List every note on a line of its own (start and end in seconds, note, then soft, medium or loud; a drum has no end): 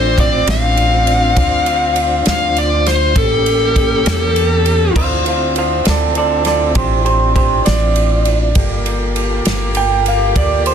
0.00 0.44 A1 loud
0.00 1.34 C4 medium
0.00 2.99 C4 medium
0.00 1.34 D4 medium
0.00 2.99 D4 medium
0.00 1.33 F4 medium
0.00 0.18 C5 medium
0.18 0.48 D5 medium
0.18 kick medium
0.18 ride medium
0.47 1.33 A1 loud
0.47 2.24 F5 loud
0.47 snare loud
0.47 ride medium
0.77 ride medium
1.07 ride medium
1.35 2.23 D2 medium
1.35 3.14 D4 medium
1.35 3.14 F4 medium
1.35 3.14 C5 medium
1.35 kick loud
1.35 ride medium
1.66 ride medium
1.96 ride medium
2.26 3.13 D2 loud
2.26 2.57 F5 medium
2.26 snare loud
2.26 ride medium
2.57 2.87 D5 loud
2.57 ride medium
2.86 3.16 C5 loud
2.86 snare soft
2.86 ride medium
3.15 4.02 A1 medium
3.15 4.94 A#3 medium
3.15 4.94 C#4 medium
3.15 4.94 G4 medium
3.15 4.93 A4 loud
3.15 kick loud
3.15 ride medium
3.46 ride medium
3.76 kick medium
3.76 ride medium
4.06 4.92 E2 loud
4.06 snare loud
4.06 ride medium
4.36 ride medium
4.66 ride medium
4.95 5.82 D2 medium
4.95 8.52 C4 medium
4.95 8.52 D4 medium
4.95 8.52 E4 medium
4.95 8.53 F4 medium
4.95 5.26 C5 medium
4.95 5.26 F5 medium
4.95 kick loud
4.95 crash medium
5.26 5.55 C5 medium
5.26 5.56 F5 medium
5.26 ride medium
5.56 5.85 C5 medium
5.56 5.86 F5 medium
5.56 ride medium
5.85 6.73 D2 medium
5.85 6.16 A4 medium
5.85 snare loud
5.85 ride medium
5.89 6.16 D5 medium
6.15 6.45 A4 medium
6.15 6.45 D5 medium
6.15 ride medium
6.45 6.74 A4 medium
6.45 6.76 D5 medium
6.45 snare soft
6.45 ride medium
6.75 7.62 A1 medium
6.75 7.04 G4 medium
6.75 7.04 C5 medium
6.75 kick loud
6.75 ride medium
7.05 7.33 G4 medium
7.05 7.35 C5 medium
7.05 ride soft
7.35 7.64 G4 medium
7.35 7.65 C5 medium
7.35 kick medium
7.35 ride medium
7.65 8.53 A1 loud
7.65 9.42 D5 medium
7.65 snare loud
7.65 ride medium
7.96 ride medium
8.25 ride medium
8.55 9.42 G1 medium
8.55 10.74 A#3 medium
8.55 10.74 F4 medium
8.55 10.74 G4 medium
8.55 10.74 A4 medium
8.55 kick loud
8.55 ride medium
8.86 ride medium
9.16 ride medium
9.45 10.32 G1 medium
9.45 snare loud
9.45 ride medium
9.75 10.06 G5 loud
9.75 ride medium
10.06 10.36 F5 medium
10.06 ride medium
10.36 10.74 D2 medium
10.36 10.66 D5 medium
10.36 kick loud
10.36 ride medium
10.66 10.74 C5 medium
10.66 ride medium